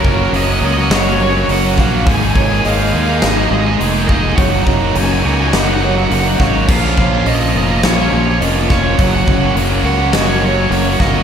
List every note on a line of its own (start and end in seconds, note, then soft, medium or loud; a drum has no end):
0.00 2.03 C#3 medium
0.00 0.19 F#3 loud
0.00 1.18 F#3 medium
0.00 2.05 F#3 medium
0.00 0.21 A#3 medium
0.00 11.23 A#3 medium
0.00 0.18 C#4 medium
0.00 0.17 F#4 medium
0.00 2.05 F#4 medium
0.00 0.61 A#4 medium
0.00 0.08 A#4 medium
0.04 0.32 F#1 medium
0.04 0.31 F#3 medium
0.04 0.32 A#3 medium
0.04 0.33 C#4 medium
0.04 0.33 F#4 medium
0.04 0.16 A#4 medium
0.04 0.63 C#5 medium
0.04 kick medium
0.16 0.34 C#4 medium
0.16 0.35 F#4 medium
0.16 0.23 A#4 medium
0.21 0.34 A#3 medium
0.21 0.31 A#4 medium
0.33 0.60 F#1 loud
0.33 0.76 F#3 medium
0.33 0.49 A#3 loud
0.33 0.48 C#4 loud
0.33 0.47 F#4 loud
0.33 0.42 D#5 loud
0.33 open hi-hat medium
0.43 0.50 D#5 medium
0.48 0.78 A#3 medium
0.48 0.76 C#4 medium
0.48 0.75 F#4 medium
0.48 0.59 D#5 medium
0.60 0.89 C#2 loud
0.60 1.06 F#3 medium
0.60 2.08 A#4 medium
0.60 0.65 D#5 medium
0.64 0.80 A#3 medium
0.64 0.77 C#4 medium
0.64 0.76 F#4 loud
0.64 0.73 D#5 medium
0.74 1.05 C#4 medium
0.74 1.04 F#4 medium
0.74 0.81 D#5 medium
0.78 1.06 A#3 medium
0.78 0.89 D#5 medium
0.90 1.45 F#1 loud
0.90 1.76 F#4 medium
0.90 1.01 C#5 loud
0.90 1.20 D#5 medium
0.90 snare loud
0.90 open hi-hat medium
1.01 1.20 F#4 medium
1.01 1.08 C#5 medium
1.06 1.19 A#3 medium
1.06 1.18 C#4 medium
1.06 1.15 C#5 medium
1.15 1.48 F#3 medium
1.15 1.22 C#5 medium
1.20 1.35 A#3 medium
1.20 1.34 C#4 medium
1.20 1.33 F#4 medium
1.20 1.78 C#5 loud
1.20 1.29 C#5 medium
1.29 1.37 C#5 medium
1.34 1.49 A#3 medium
1.34 1.49 C#4 medium
1.34 1.50 F#4 medium
1.34 1.44 C#5 medium
1.34 muted distorted electric guitar stroke medium
1.45 1.76 F#1 medium
1.45 1.52 C#5 medium
1.49 1.77 F#3 loud
1.49 1.64 A#3 loud
1.49 1.63 C#4 loud
1.49 1.62 F#4 loud
1.49 1.81 F#5 loud
1.49 open hi-hat medium
1.63 1.78 A#3 medium
1.63 1.78 C#4 medium
1.63 1.79 F#4 medium
1.77 2.05 A#1 medium
1.77 2.05 F#3 medium
1.77 2.06 A#3 medium
1.77 2.06 C#4 medium
1.77 2.06 F#4 medium
1.77 2.07 F5 medium
1.77 2.09 F5 loud
1.77 kick medium
1.77 snare soft
1.91 2.06 A#3 medium
1.91 2.05 C#4 medium
1.91 2.04 F#4 medium
2.06 2.61 G#1 loud
2.06 4.35 D#3 medium
2.06 2.33 G#3 loud
2.06 4.35 G#3 medium
2.06 2.22 A#3 loud
2.06 2.21 D#4 loud
2.06 4.35 G#4 medium
2.06 2.19 G#4 loud
2.06 2.15 G#5 loud
2.06 kick loud
2.06 open hi-hat medium
2.15 2.22 G#5 medium
2.20 2.34 A#3 medium
2.20 2.35 D#4 medium
2.20 2.35 G#4 medium
2.20 2.31 G#5 loud
2.31 2.62 G#3 medium
2.31 2.64 A#3 medium
2.31 2.64 D#4 medium
2.31 2.38 G#5 medium
2.35 2.64 G#4 loud
2.35 2.65 C#5 medium
2.35 2.45 G#5 loud
2.35 kick medium
2.45 2.65 G#4 medium
2.45 2.52 G#5 medium
2.51 2.65 A#3 medium
2.51 2.65 D#4 medium
2.51 2.60 G#5 loud
2.60 3.07 G#3 medium
2.60 2.78 A#3 loud
2.60 2.67 G#5 medium
2.64 2.92 G#1 loud
2.64 2.78 D#4 loud
2.64 2.76 G#4 loud
2.64 3.23 D#5 medium
2.64 2.74 F5 loud
2.64 open hi-hat medium
2.74 3.05 G#4 medium
2.74 2.81 F5 medium
2.78 3.08 A#3 medium
2.78 3.06 D#4 medium
2.78 2.88 F5 loud
2.89 3.36 G#3 medium
2.89 2.96 F5 medium
2.93 3.21 D#2 loud
2.93 3.10 A#3 medium
2.93 3.07 D#4 medium
2.93 3.05 G#4 loud
2.93 5.23 A#4 medium
2.97 3.02 F5 loud
3.03 3.33 G#4 medium
3.03 3.10 F5 medium
3.07 3.36 A#3 medium
3.07 3.34 D#4 medium
3.07 3.18 F5 loud
3.19 3.50 G#1 loud
3.19 3.30 D#5 medium
3.19 3.26 F5 medium
3.19 3.80 F5 medium
3.19 snare loud
3.19 open hi-hat medium
3.23 4.08 D#4 medium
3.31 3.50 G#4 medium
3.31 3.37 D#5 medium
3.36 3.50 A#3 medium
3.36 3.49 D#4 medium
3.36 3.45 D#5 medium
3.45 3.77 G#3 medium
3.45 3.53 D#5 medium
3.50 3.78 G#1 loud
3.50 3.65 A#3 medium
3.50 3.63 D#4 medium
3.50 3.62 G#4 medium
3.54 3.60 D#5 medium
3.61 3.82 G#4 medium
3.61 3.67 D#5 medium
3.61 muted distorted electric guitar stroke medium
3.66 3.80 A#3 medium
3.66 3.81 D#4 medium
3.66 3.75 D#5 medium
3.78 4.34 F1 loud
3.78 4.05 G#3 loud
3.78 3.95 A#3 loud
3.78 3.93 D#4 loud
3.78 3.92 G#4 loud
3.78 4.38 D#5 medium
3.78 open hi-hat medium
3.93 4.07 A#3 medium
3.93 4.07 D#4 medium
3.93 4.07 G#4 medium
4.07 4.35 G#3 medium
4.07 4.36 A#3 medium
4.07 4.36 D#4 medium
4.07 4.36 G#4 medium
4.07 4.38 D#5 loud
4.07 kick medium
4.22 4.36 A#3 medium
4.22 4.36 D#4 medium
4.22 4.35 G#4 medium
4.36 4.65 F#1 loud
4.36 4.64 F#3 medium
4.36 6.67 F#3 medium
4.36 4.53 A#3 loud
4.36 4.51 D#4 loud
4.36 4.51 F#4 loud
4.36 4.65 C#5 medium
4.36 4.65 F#5 loud
4.36 kick loud
4.36 open hi-hat medium
4.40 6.67 C#3 medium
4.40 6.67 D#4 medium
4.52 4.66 A#3 medium
4.52 4.65 D#4 medium
4.52 4.66 F#4 medium
4.65 4.93 F#1 medium
4.65 4.93 F#3 medium
4.65 4.94 A#3 medium
4.65 4.96 C#4 medium
4.65 4.94 D#4 medium
4.65 4.95 F#4 medium
4.65 5.24 C#5 medium
4.65 4.96 A#5 loud
4.65 kick medium
4.79 4.95 A#3 medium
4.79 4.95 D#4 medium
4.79 4.96 F#4 medium
4.94 5.22 F#1 loud
4.94 5.38 F#3 loud
4.94 5.10 A#3 loud
4.94 6.11 C#4 medium
4.94 5.08 D#4 medium
4.94 5.07 F#4 loud
4.94 5.04 G#5 loud
4.94 open hi-hat medium
5.04 5.11 G#5 medium
5.08 5.40 A#3 medium
5.08 5.39 D#4 medium
5.08 5.38 F#4 medium
5.08 5.18 G#5 loud
5.19 5.67 F#3 medium
5.19 5.26 G#5 medium
5.24 5.51 C#2 medium
5.24 5.39 A#3 medium
5.24 5.38 D#4 medium
5.24 5.36 F#4 medium
5.24 7.55 A#4 medium
5.24 5.33 G#5 loud
5.33 5.40 G#5 medium
5.39 5.69 A#3 medium
5.39 5.68 D#4 medium
5.39 5.67 F#4 medium
5.39 5.47 G#5 medium
5.48 5.53 G#5 medium
5.53 6.07 F#1 loud
5.53 6.39 D#4 medium
5.53 5.82 D#5 medium
5.53 5.60 F#5 medium
5.53 snare loud
5.53 open hi-hat medium
5.60 5.68 F#5 medium
5.68 5.82 A#3 medium
5.68 5.82 D#4 medium
5.68 5.83 F#4 medium
5.68 5.74 F#5 medium
5.74 5.82 F#5 medium
5.82 6.08 F#3 medium
5.82 5.97 A#3 medium
5.82 5.95 D#4 medium
5.82 5.95 F#4 medium
5.82 6.40 C#5 medium
5.82 5.90 F#5 medium
5.91 6.10 F#4 medium
5.91 5.98 F#5 medium
5.96 6.09 A#3 medium
5.96 6.09 D#4 medium
5.96 6.04 F#5 medium
5.96 muted distorted electric guitar stroke medium
6.05 6.12 F#5 medium
6.10 6.38 F#1 medium
6.10 6.38 F#3 loud
6.10 6.28 A#3 loud
6.10 7.25 C#4 medium
6.10 6.26 D#4 loud
6.10 6.25 F#4 loud
6.10 6.20 F#5 medium
6.10 open hi-hat medium
6.20 6.27 F#5 medium
6.26 6.40 A#3 medium
6.26 6.40 D#4 medium
6.26 6.40 F#4 medium
6.26 6.35 F#5 medium
6.35 6.43 F#5 medium
6.39 6.67 G#1 medium
6.39 6.67 F#3 medium
6.39 6.69 A#3 medium
6.39 6.67 D#4 medium
6.39 6.68 F#4 medium
6.39 6.70 C#5 medium
6.39 6.69 F5 medium
6.39 kick medium
6.39 snare soft
6.53 6.68 A#3 medium
6.53 6.67 D#4 medium
6.53 6.66 F#4 medium
6.68 7.23 A#1 medium
6.68 7.12 A#2 medium
6.68 11.23 C#3 medium
6.68 6.96 F3 loud
6.68 8.97 F3 medium
6.68 6.84 A#3 loud
6.68 6.83 C#4 medium
6.68 8.97 F4 medium
6.68 6.81 F4 loud
6.68 6.76 F5 medium
6.68 kick loud
6.68 crash loud
6.77 6.83 F5 medium
6.83 6.98 A#3 medium
6.83 6.98 C#4 medium
6.83 6.97 F4 medium
6.83 6.91 F5 medium
6.91 6.98 F5 medium
6.97 7.26 F3 medium
6.97 7.27 A#3 medium
6.97 7.27 C#4 medium
6.97 7.26 F4 medium
6.97 7.26 C#5 medium
6.97 7.06 F5 medium
6.97 kick medium
7.06 7.13 F5 medium
7.11 7.26 A#3 medium
7.11 7.27 C#4 medium
7.11 7.27 F4 medium
7.11 7.20 F5 medium
7.20 7.28 F5 medium
7.25 7.53 A#1 loud
7.25 7.69 A#2 medium
7.25 7.70 F3 loud
7.25 7.42 A#3 loud
7.25 7.41 C#4 loud
7.25 7.39 F4 loud
7.25 7.84 D#5 medium
7.25 7.34 D#5 medium
7.25 open hi-hat medium
7.35 7.42 D#5 medium
7.40 7.70 A#3 medium
7.40 7.68 C#4 medium
7.40 7.67 F4 medium
7.40 7.49 D#5 medium
7.49 7.56 D#5 medium
7.54 7.82 F1 loud
7.54 7.97 F3 medium
7.54 7.72 A#3 medium
7.54 7.70 C#4 medium
7.54 7.67 F4 medium
7.54 9.84 A#4 medium
7.54 7.63 D#5 medium
7.64 7.71 D#5 medium
7.68 8.00 A#3 medium
7.68 7.98 C#4 medium
7.68 7.97 F4 medium
7.68 7.78 D#5 medium
7.79 7.85 D#5 medium
7.83 8.10 A#1 loud
7.83 8.68 F4 medium
7.83 7.92 C#5 medium
7.83 8.41 F5 medium
7.83 snare loud
7.83 open hi-hat medium
7.93 8.00 C#5 medium
7.98 8.12 A#3 medium
7.98 8.11 C#4 medium
7.98 8.11 F4 medium
7.98 8.08 C#5 medium
8.08 8.26 F3 medium
8.08 8.27 A#3 medium
8.08 8.26 C#4 medium
8.08 8.14 C#5 medium
8.12 8.39 A#1 loud
8.12 8.25 F4 medium
8.12 8.22 C#5 medium
8.23 8.40 C#4 medium
8.23 8.41 F4 medium
8.23 8.29 C#5 medium
8.23 muted distorted electric guitar stroke medium
8.28 8.41 A#3 medium
8.28 8.37 C#5 medium
8.41 8.95 F1 loud
8.41 8.84 A#2 loud
8.41 8.70 F3 medium
8.41 8.56 A#3 loud
8.41 8.55 C#4 loud
8.41 8.53 F4 loud
8.41 8.98 D#5 medium
8.41 open hi-hat medium
8.54 8.71 A#3 medium
8.54 8.71 C#4 medium
8.54 8.71 F4 medium
8.70 8.97 F3 medium
8.70 8.99 A#3 medium
8.70 8.98 C#4 medium
8.70 8.98 F4 loud
8.70 8.98 C#5 medium
8.70 kick medium
8.70 snare soft
8.83 8.97 A#3 medium
8.83 8.97 C#4 medium
8.83 8.96 F4 medium
8.98 9.26 F#1 loud
8.98 9.26 F#3 loud
8.98 11.23 F#3 medium
8.98 9.14 A#3 loud
8.98 9.12 C#4 loud
8.98 9.11 F#4 loud
8.98 11.23 F#4 medium
8.98 9.26 C#5 medium
8.98 9.08 F#5 loud
8.98 kick loud
8.98 open hi-hat medium
9.08 9.14 F#5 medium
9.12 9.27 A#3 medium
9.12 9.27 C#4 medium
9.12 9.28 F#4 medium
9.12 9.22 F#5 loud
9.23 9.54 F#1 loud
9.23 9.53 F#3 medium
9.23 9.85 C#5 medium
9.23 9.31 F#5 medium
9.28 9.55 A#3 medium
9.28 9.55 C#4 medium
9.28 9.55 F#4 medium
9.28 9.38 F#5 medium
9.28 kick medium
9.39 9.55 C#4 medium
9.39 9.56 F#4 medium
9.39 9.46 F#5 medium
9.43 9.55 A#3 medium
9.43 9.54 F#5 medium
9.55 9.82 F#1 loud
9.55 9.99 F#3 medium
9.55 9.72 A#3 loud
9.55 9.70 C#4 loud
9.55 9.69 F#4 loud
9.55 open hi-hat medium
9.70 10.00 A#3 medium
9.70 9.98 C#4 medium
9.70 9.97 F#4 medium
9.83 10.11 C#2 loud
9.83 10.27 F#3 medium
9.83 10.01 A#3 medium
9.83 9.99 C#4 medium
9.83 9.97 F#4 medium
9.83 11.23 A#4 medium
9.83 10.12 F#5 loud
9.98 10.28 A#3 medium
9.98 10.26 C#4 medium
9.98 10.25 F#4 medium
10.13 10.67 F#1 medium
10.13 10.99 F#4 medium
10.13 10.43 D#5 medium
10.13 snare loud
10.13 open hi-hat medium
10.17 10.24 C#5 loud
10.24 10.42 C#4 medium
10.24 10.42 F#4 medium
10.24 10.31 C#5 medium
10.29 10.42 A#3 medium
10.29 10.39 C#5 medium
10.40 10.68 F#3 medium
10.40 10.55 A#3 medium
10.40 10.55 C#4 medium
10.40 10.54 F#4 medium
10.40 10.45 C#5 medium
10.40 11.00 C#5 medium
10.45 10.53 C#5 medium
10.55 10.70 C#4 medium
10.55 10.72 F#4 medium
10.55 10.61 C#5 medium
10.55 muted distorted electric guitar stroke medium
10.59 10.71 A#3 medium
10.59 10.68 C#5 medium
10.70 10.98 F#1 loud
10.70 10.97 F#3 loud
10.70 10.85 A#3 loud
10.70 10.83 C#4 loud
10.70 10.82 F#4 loud
10.70 11.01 C#5 loud
10.70 open hi-hat medium
10.84 10.99 A#3 medium
10.84 10.99 C#4 medium
10.84 10.99 F#4 medium
10.98 11.23 G1 loud
10.98 11.23 F#3 medium
10.98 11.23 A#3 medium
10.98 11.23 C#4 medium
10.98 11.23 F#4 medium
10.98 11.23 D#5 loud
10.98 11.23 F5 medium
10.98 kick medium
10.98 snare soft
11.13 11.23 A#3 medium
11.13 11.23 C#4 medium
11.13 11.23 F#4 medium